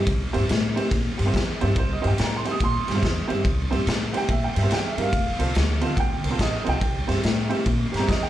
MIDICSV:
0, 0, Header, 1, 4, 480
1, 0, Start_track
1, 0, Tempo, 421644
1, 88, Time_signature, 4, 2, 24, 8
1, 9444, End_track
2, 0, Start_track
2, 0, Title_t, "Upright piano"
2, 0, Program_c, 0, 0
2, 373, Note_on_c, 0, 64, 81
2, 375, Note_on_c, 0, 67, 77
2, 378, Note_on_c, 0, 60, 83
2, 378, Note_on_c, 0, 72, 90
2, 470, Note_off_c, 0, 64, 0
2, 471, Note_off_c, 0, 67, 0
2, 473, Note_off_c, 0, 60, 0
2, 473, Note_off_c, 0, 72, 0
2, 857, Note_on_c, 0, 64, 64
2, 863, Note_on_c, 0, 67, 75
2, 865, Note_on_c, 0, 72, 88
2, 866, Note_on_c, 0, 60, 79
2, 953, Note_off_c, 0, 64, 0
2, 956, Note_off_c, 0, 67, 0
2, 956, Note_off_c, 0, 72, 0
2, 957, Note_off_c, 0, 60, 0
2, 1333, Note_on_c, 0, 67, 58
2, 1341, Note_on_c, 0, 72, 55
2, 1388, Note_off_c, 0, 67, 0
2, 1392, Note_off_c, 0, 72, 0
2, 1428, Note_on_c, 0, 67, 66
2, 1431, Note_on_c, 0, 60, 74
2, 1433, Note_on_c, 0, 64, 71
2, 1436, Note_on_c, 0, 72, 80
2, 1521, Note_off_c, 0, 67, 0
2, 1523, Note_off_c, 0, 60, 0
2, 1524, Note_off_c, 0, 64, 0
2, 1525, Note_off_c, 0, 72, 0
2, 1833, Note_on_c, 0, 60, 85
2, 1833, Note_on_c, 0, 72, 90
2, 1835, Note_on_c, 0, 67, 73
2, 1839, Note_on_c, 0, 64, 85
2, 1921, Note_off_c, 0, 60, 0
2, 1921, Note_off_c, 0, 72, 0
2, 1922, Note_off_c, 0, 67, 0
2, 1924, Note_off_c, 0, 64, 0
2, 2029, Note_on_c, 0, 72, 89
2, 2174, Note_off_c, 0, 72, 0
2, 2194, Note_on_c, 0, 75, 82
2, 2296, Note_on_c, 0, 60, 76
2, 2298, Note_on_c, 0, 67, 75
2, 2298, Note_on_c, 0, 72, 85
2, 2299, Note_on_c, 0, 64, 71
2, 2337, Note_off_c, 0, 75, 0
2, 2360, Note_on_c, 0, 79, 82
2, 2393, Note_off_c, 0, 60, 0
2, 2394, Note_off_c, 0, 64, 0
2, 2394, Note_off_c, 0, 67, 0
2, 2394, Note_off_c, 0, 72, 0
2, 2501, Note_off_c, 0, 79, 0
2, 2538, Note_on_c, 0, 82, 73
2, 2670, Note_off_c, 0, 82, 0
2, 2692, Note_on_c, 0, 84, 82
2, 2792, Note_on_c, 0, 60, 69
2, 2793, Note_on_c, 0, 67, 60
2, 2795, Note_on_c, 0, 64, 59
2, 2795, Note_on_c, 0, 72, 76
2, 2827, Note_off_c, 0, 84, 0
2, 2862, Note_on_c, 0, 87, 82
2, 2881, Note_off_c, 0, 60, 0
2, 2881, Note_off_c, 0, 67, 0
2, 2882, Note_off_c, 0, 64, 0
2, 2883, Note_off_c, 0, 72, 0
2, 2992, Note_off_c, 0, 87, 0
2, 3003, Note_on_c, 0, 84, 118
2, 3276, Note_on_c, 0, 67, 43
2, 3281, Note_on_c, 0, 72, 52
2, 3320, Note_off_c, 0, 67, 0
2, 3323, Note_off_c, 0, 72, 0
2, 3355, Note_on_c, 0, 67, 62
2, 3359, Note_on_c, 0, 72, 75
2, 3363, Note_on_c, 0, 60, 75
2, 3363, Note_on_c, 0, 64, 63
2, 3446, Note_off_c, 0, 67, 0
2, 3447, Note_off_c, 0, 72, 0
2, 3449, Note_off_c, 0, 60, 0
2, 3449, Note_off_c, 0, 64, 0
2, 3729, Note_on_c, 0, 64, 75
2, 3730, Note_on_c, 0, 72, 82
2, 3732, Note_on_c, 0, 60, 75
2, 3737, Note_on_c, 0, 67, 76
2, 3829, Note_off_c, 0, 64, 0
2, 3830, Note_off_c, 0, 72, 0
2, 3831, Note_off_c, 0, 60, 0
2, 3833, Note_off_c, 0, 67, 0
2, 4218, Note_on_c, 0, 67, 74
2, 4221, Note_on_c, 0, 72, 95
2, 4222, Note_on_c, 0, 60, 89
2, 4223, Note_on_c, 0, 64, 76
2, 4314, Note_off_c, 0, 67, 0
2, 4315, Note_off_c, 0, 72, 0
2, 4316, Note_off_c, 0, 60, 0
2, 4316, Note_off_c, 0, 64, 0
2, 4384, Note_off_c, 0, 84, 0
2, 4697, Note_on_c, 0, 78, 72
2, 4701, Note_on_c, 0, 67, 58
2, 4705, Note_on_c, 0, 60, 60
2, 4706, Note_on_c, 0, 64, 58
2, 4706, Note_on_c, 0, 72, 75
2, 4738, Note_off_c, 0, 78, 0
2, 4751, Note_on_c, 0, 79, 104
2, 4796, Note_off_c, 0, 67, 0
2, 4797, Note_off_c, 0, 60, 0
2, 4798, Note_off_c, 0, 64, 0
2, 4798, Note_off_c, 0, 72, 0
2, 4896, Note_off_c, 0, 79, 0
2, 4896, Note_on_c, 0, 76, 94
2, 5048, Note_off_c, 0, 76, 0
2, 5058, Note_on_c, 0, 79, 86
2, 5185, Note_on_c, 0, 72, 46
2, 5188, Note_on_c, 0, 67, 46
2, 5209, Note_off_c, 0, 79, 0
2, 5221, Note_on_c, 0, 76, 84
2, 5234, Note_off_c, 0, 72, 0
2, 5236, Note_off_c, 0, 67, 0
2, 5269, Note_on_c, 0, 60, 63
2, 5269, Note_on_c, 0, 67, 67
2, 5269, Note_on_c, 0, 72, 80
2, 5270, Note_on_c, 0, 64, 58
2, 5337, Note_on_c, 0, 78, 69
2, 5362, Note_off_c, 0, 72, 0
2, 5363, Note_off_c, 0, 60, 0
2, 5363, Note_off_c, 0, 64, 0
2, 5363, Note_off_c, 0, 67, 0
2, 5371, Note_off_c, 0, 76, 0
2, 5373, Note_off_c, 0, 78, 0
2, 5390, Note_on_c, 0, 79, 93
2, 5535, Note_off_c, 0, 79, 0
2, 5551, Note_on_c, 0, 76, 85
2, 5662, Note_on_c, 0, 64, 59
2, 5663, Note_on_c, 0, 60, 74
2, 5663, Note_on_c, 0, 70, 78
2, 5672, Note_on_c, 0, 67, 59
2, 5696, Note_off_c, 0, 76, 0
2, 5708, Note_on_c, 0, 77, 99
2, 5756, Note_off_c, 0, 60, 0
2, 5756, Note_off_c, 0, 64, 0
2, 5756, Note_off_c, 0, 70, 0
2, 5761, Note_off_c, 0, 67, 0
2, 6136, Note_on_c, 0, 65, 64
2, 6137, Note_on_c, 0, 60, 69
2, 6137, Note_on_c, 0, 69, 68
2, 6141, Note_on_c, 0, 72, 75
2, 6165, Note_off_c, 0, 77, 0
2, 6233, Note_off_c, 0, 60, 0
2, 6233, Note_off_c, 0, 65, 0
2, 6233, Note_off_c, 0, 69, 0
2, 6235, Note_off_c, 0, 72, 0
2, 6619, Note_on_c, 0, 60, 81
2, 6619, Note_on_c, 0, 65, 78
2, 6620, Note_on_c, 0, 72, 89
2, 6623, Note_on_c, 0, 69, 64
2, 6714, Note_off_c, 0, 60, 0
2, 6714, Note_off_c, 0, 65, 0
2, 6714, Note_off_c, 0, 72, 0
2, 6716, Note_off_c, 0, 69, 0
2, 6780, Note_on_c, 0, 78, 74
2, 6815, Note_off_c, 0, 78, 0
2, 6826, Note_on_c, 0, 79, 99
2, 7107, Note_on_c, 0, 72, 51
2, 7108, Note_on_c, 0, 69, 44
2, 7154, Note_off_c, 0, 72, 0
2, 7155, Note_off_c, 0, 69, 0
2, 7175, Note_on_c, 0, 60, 69
2, 7178, Note_on_c, 0, 69, 59
2, 7179, Note_on_c, 0, 65, 61
2, 7182, Note_on_c, 0, 72, 79
2, 7274, Note_off_c, 0, 60, 0
2, 7276, Note_off_c, 0, 69, 0
2, 7277, Note_off_c, 0, 65, 0
2, 7278, Note_off_c, 0, 72, 0
2, 7283, Note_off_c, 0, 79, 0
2, 7295, Note_on_c, 0, 75, 93
2, 7443, Note_off_c, 0, 75, 0
2, 7460, Note_on_c, 0, 75, 86
2, 7564, Note_on_c, 0, 72, 74
2, 7565, Note_on_c, 0, 60, 68
2, 7568, Note_on_c, 0, 65, 65
2, 7571, Note_on_c, 0, 69, 69
2, 7609, Note_off_c, 0, 75, 0
2, 7615, Note_on_c, 0, 79, 106
2, 7666, Note_off_c, 0, 60, 0
2, 7666, Note_off_c, 0, 72, 0
2, 7668, Note_off_c, 0, 65, 0
2, 7669, Note_off_c, 0, 69, 0
2, 8055, Note_on_c, 0, 72, 89
2, 8056, Note_on_c, 0, 60, 82
2, 8057, Note_on_c, 0, 67, 66
2, 8058, Note_on_c, 0, 64, 68
2, 8151, Note_off_c, 0, 60, 0
2, 8151, Note_off_c, 0, 72, 0
2, 8152, Note_off_c, 0, 64, 0
2, 8152, Note_off_c, 0, 67, 0
2, 8528, Note_on_c, 0, 67, 83
2, 8530, Note_on_c, 0, 60, 85
2, 8533, Note_on_c, 0, 72, 88
2, 8536, Note_on_c, 0, 64, 79
2, 8541, Note_off_c, 0, 79, 0
2, 8627, Note_off_c, 0, 67, 0
2, 8628, Note_off_c, 0, 60, 0
2, 8630, Note_off_c, 0, 72, 0
2, 8631, Note_off_c, 0, 64, 0
2, 9009, Note_on_c, 0, 67, 51
2, 9016, Note_on_c, 0, 72, 52
2, 9056, Note_on_c, 0, 82, 89
2, 9064, Note_off_c, 0, 67, 0
2, 9067, Note_off_c, 0, 72, 0
2, 9095, Note_on_c, 0, 60, 68
2, 9101, Note_on_c, 0, 67, 67
2, 9103, Note_on_c, 0, 64, 61
2, 9108, Note_on_c, 0, 72, 72
2, 9193, Note_off_c, 0, 60, 0
2, 9196, Note_off_c, 0, 67, 0
2, 9197, Note_off_c, 0, 64, 0
2, 9199, Note_off_c, 0, 72, 0
2, 9201, Note_on_c, 0, 75, 92
2, 9206, Note_off_c, 0, 82, 0
2, 9358, Note_off_c, 0, 75, 0
2, 9367, Note_on_c, 0, 79, 82
2, 9444, Note_off_c, 0, 79, 0
2, 9444, End_track
3, 0, Start_track
3, 0, Title_t, "Upright bass"
3, 0, Program_c, 1, 32
3, 80, Note_on_c, 1, 36, 89
3, 273, Note_off_c, 1, 36, 0
3, 407, Note_on_c, 1, 43, 80
3, 510, Note_off_c, 1, 43, 0
3, 572, Note_on_c, 1, 45, 100
3, 869, Note_off_c, 1, 45, 0
3, 1042, Note_on_c, 1, 46, 89
3, 1235, Note_off_c, 1, 46, 0
3, 1363, Note_on_c, 1, 43, 96
3, 1468, Note_off_c, 1, 43, 0
3, 1526, Note_on_c, 1, 40, 86
3, 1718, Note_off_c, 1, 40, 0
3, 1854, Note_on_c, 1, 43, 91
3, 1955, Note_off_c, 1, 43, 0
3, 2002, Note_on_c, 1, 36, 84
3, 2195, Note_off_c, 1, 36, 0
3, 2332, Note_on_c, 1, 43, 87
3, 2434, Note_off_c, 1, 43, 0
3, 2502, Note_on_c, 1, 45, 92
3, 2796, Note_off_c, 1, 45, 0
3, 2969, Note_on_c, 1, 46, 89
3, 3160, Note_off_c, 1, 46, 0
3, 3296, Note_on_c, 1, 43, 97
3, 3397, Note_off_c, 1, 43, 0
3, 3450, Note_on_c, 1, 40, 87
3, 3641, Note_off_c, 1, 40, 0
3, 3760, Note_on_c, 1, 43, 83
3, 3867, Note_off_c, 1, 43, 0
3, 3925, Note_on_c, 1, 36, 96
3, 4118, Note_off_c, 1, 36, 0
3, 4237, Note_on_c, 1, 43, 88
3, 4344, Note_off_c, 1, 43, 0
3, 4402, Note_on_c, 1, 45, 88
3, 4702, Note_off_c, 1, 45, 0
3, 4886, Note_on_c, 1, 46, 90
3, 5079, Note_off_c, 1, 46, 0
3, 5195, Note_on_c, 1, 43, 92
3, 5303, Note_off_c, 1, 43, 0
3, 5367, Note_on_c, 1, 40, 75
3, 5559, Note_off_c, 1, 40, 0
3, 5661, Note_on_c, 1, 43, 87
3, 5773, Note_off_c, 1, 43, 0
3, 5841, Note_on_c, 1, 29, 83
3, 6034, Note_off_c, 1, 29, 0
3, 6139, Note_on_c, 1, 36, 78
3, 6252, Note_off_c, 1, 36, 0
3, 6328, Note_on_c, 1, 38, 85
3, 6626, Note_off_c, 1, 38, 0
3, 6798, Note_on_c, 1, 38, 84
3, 6992, Note_off_c, 1, 38, 0
3, 7102, Note_on_c, 1, 36, 83
3, 7213, Note_off_c, 1, 36, 0
3, 7278, Note_on_c, 1, 33, 92
3, 7472, Note_off_c, 1, 33, 0
3, 7596, Note_on_c, 1, 36, 96
3, 7703, Note_off_c, 1, 36, 0
3, 7756, Note_on_c, 1, 36, 89
3, 7950, Note_off_c, 1, 36, 0
3, 8070, Note_on_c, 1, 43, 84
3, 8178, Note_off_c, 1, 43, 0
3, 8245, Note_on_c, 1, 45, 93
3, 8543, Note_off_c, 1, 45, 0
3, 8727, Note_on_c, 1, 46, 101
3, 8917, Note_off_c, 1, 46, 0
3, 9039, Note_on_c, 1, 43, 93
3, 9144, Note_off_c, 1, 43, 0
3, 9206, Note_on_c, 1, 40, 91
3, 9396, Note_off_c, 1, 40, 0
3, 9444, End_track
4, 0, Start_track
4, 0, Title_t, "Drums"
4, 78, Note_on_c, 9, 36, 109
4, 78, Note_on_c, 9, 51, 84
4, 192, Note_off_c, 9, 36, 0
4, 192, Note_off_c, 9, 51, 0
4, 388, Note_on_c, 9, 51, 62
4, 502, Note_off_c, 9, 51, 0
4, 560, Note_on_c, 9, 51, 81
4, 579, Note_on_c, 9, 38, 99
4, 673, Note_off_c, 9, 51, 0
4, 693, Note_off_c, 9, 38, 0
4, 878, Note_on_c, 9, 51, 63
4, 992, Note_off_c, 9, 51, 0
4, 1040, Note_on_c, 9, 36, 111
4, 1040, Note_on_c, 9, 51, 84
4, 1060, Note_on_c, 9, 38, 32
4, 1154, Note_off_c, 9, 36, 0
4, 1154, Note_off_c, 9, 51, 0
4, 1173, Note_off_c, 9, 38, 0
4, 1354, Note_on_c, 9, 51, 65
4, 1468, Note_off_c, 9, 51, 0
4, 1524, Note_on_c, 9, 36, 74
4, 1529, Note_on_c, 9, 51, 84
4, 1548, Note_on_c, 9, 38, 109
4, 1637, Note_off_c, 9, 36, 0
4, 1643, Note_off_c, 9, 51, 0
4, 1662, Note_off_c, 9, 38, 0
4, 1834, Note_on_c, 9, 51, 64
4, 1947, Note_off_c, 9, 51, 0
4, 2001, Note_on_c, 9, 51, 86
4, 2004, Note_on_c, 9, 36, 113
4, 2115, Note_off_c, 9, 51, 0
4, 2118, Note_off_c, 9, 36, 0
4, 2321, Note_on_c, 9, 51, 57
4, 2435, Note_off_c, 9, 51, 0
4, 2482, Note_on_c, 9, 51, 88
4, 2501, Note_on_c, 9, 38, 114
4, 2596, Note_off_c, 9, 51, 0
4, 2615, Note_off_c, 9, 38, 0
4, 2792, Note_on_c, 9, 51, 67
4, 2906, Note_off_c, 9, 51, 0
4, 2964, Note_on_c, 9, 51, 87
4, 2965, Note_on_c, 9, 36, 116
4, 3078, Note_off_c, 9, 51, 0
4, 3079, Note_off_c, 9, 36, 0
4, 3277, Note_on_c, 9, 51, 55
4, 3297, Note_on_c, 9, 38, 36
4, 3391, Note_off_c, 9, 51, 0
4, 3410, Note_off_c, 9, 38, 0
4, 3446, Note_on_c, 9, 36, 73
4, 3447, Note_on_c, 9, 51, 69
4, 3467, Note_on_c, 9, 38, 103
4, 3560, Note_off_c, 9, 36, 0
4, 3561, Note_off_c, 9, 51, 0
4, 3580, Note_off_c, 9, 38, 0
4, 3757, Note_on_c, 9, 51, 60
4, 3871, Note_off_c, 9, 51, 0
4, 3925, Note_on_c, 9, 36, 107
4, 3928, Note_on_c, 9, 51, 86
4, 4039, Note_off_c, 9, 36, 0
4, 4042, Note_off_c, 9, 51, 0
4, 4239, Note_on_c, 9, 51, 57
4, 4353, Note_off_c, 9, 51, 0
4, 4405, Note_on_c, 9, 51, 87
4, 4424, Note_on_c, 9, 38, 103
4, 4518, Note_off_c, 9, 51, 0
4, 4538, Note_off_c, 9, 38, 0
4, 4714, Note_on_c, 9, 51, 66
4, 4828, Note_off_c, 9, 51, 0
4, 4881, Note_on_c, 9, 36, 106
4, 4885, Note_on_c, 9, 51, 83
4, 4995, Note_off_c, 9, 36, 0
4, 4999, Note_off_c, 9, 51, 0
4, 5193, Note_on_c, 9, 51, 68
4, 5307, Note_off_c, 9, 51, 0
4, 5357, Note_on_c, 9, 51, 83
4, 5377, Note_on_c, 9, 38, 97
4, 5471, Note_off_c, 9, 51, 0
4, 5491, Note_off_c, 9, 38, 0
4, 5669, Note_on_c, 9, 51, 67
4, 5783, Note_off_c, 9, 51, 0
4, 5838, Note_on_c, 9, 36, 112
4, 5839, Note_on_c, 9, 51, 95
4, 5952, Note_off_c, 9, 36, 0
4, 5953, Note_off_c, 9, 51, 0
4, 6142, Note_on_c, 9, 51, 65
4, 6256, Note_off_c, 9, 51, 0
4, 6316, Note_on_c, 9, 51, 91
4, 6336, Note_on_c, 9, 38, 114
4, 6430, Note_off_c, 9, 51, 0
4, 6450, Note_off_c, 9, 38, 0
4, 6618, Note_on_c, 9, 51, 64
4, 6732, Note_off_c, 9, 51, 0
4, 6797, Note_on_c, 9, 36, 119
4, 6801, Note_on_c, 9, 51, 85
4, 6911, Note_off_c, 9, 36, 0
4, 6915, Note_off_c, 9, 51, 0
4, 7105, Note_on_c, 9, 51, 67
4, 7218, Note_off_c, 9, 51, 0
4, 7276, Note_on_c, 9, 51, 85
4, 7278, Note_on_c, 9, 36, 74
4, 7295, Note_on_c, 9, 38, 108
4, 7390, Note_off_c, 9, 51, 0
4, 7392, Note_off_c, 9, 36, 0
4, 7409, Note_off_c, 9, 38, 0
4, 7587, Note_on_c, 9, 51, 60
4, 7700, Note_off_c, 9, 51, 0
4, 7756, Note_on_c, 9, 51, 83
4, 7757, Note_on_c, 9, 36, 106
4, 7869, Note_off_c, 9, 51, 0
4, 7871, Note_off_c, 9, 36, 0
4, 8067, Note_on_c, 9, 51, 53
4, 8087, Note_on_c, 9, 38, 32
4, 8181, Note_off_c, 9, 51, 0
4, 8200, Note_off_c, 9, 38, 0
4, 8235, Note_on_c, 9, 51, 76
4, 8255, Note_on_c, 9, 38, 106
4, 8349, Note_off_c, 9, 51, 0
4, 8369, Note_off_c, 9, 38, 0
4, 8542, Note_on_c, 9, 51, 57
4, 8656, Note_off_c, 9, 51, 0
4, 8716, Note_on_c, 9, 51, 92
4, 8722, Note_on_c, 9, 36, 110
4, 8830, Note_off_c, 9, 51, 0
4, 8835, Note_off_c, 9, 36, 0
4, 9038, Note_on_c, 9, 51, 64
4, 9058, Note_on_c, 9, 38, 34
4, 9152, Note_off_c, 9, 51, 0
4, 9171, Note_off_c, 9, 38, 0
4, 9205, Note_on_c, 9, 36, 86
4, 9210, Note_on_c, 9, 51, 81
4, 9230, Note_on_c, 9, 38, 100
4, 9319, Note_off_c, 9, 36, 0
4, 9324, Note_off_c, 9, 51, 0
4, 9343, Note_off_c, 9, 38, 0
4, 9444, End_track
0, 0, End_of_file